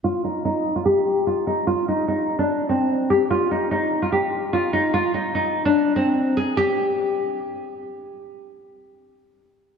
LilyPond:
\new Staff \with { instrumentName = "Nylon-string guitar" } { \time 4/4 \key ees \major \tempo 4 = 147 f'8 ees'8 ees'8. f'16 g'4 f'8 ees'8 | f'8 ees'8 ees'8. d'8. c'4 g'8 | f'8 ees'8 ees'8. f'16 g'4 f'8 ees'8 | f'8 ees'8 ees'8. d'8. c'4 aes'8 |
g'2. r4 | r1 | }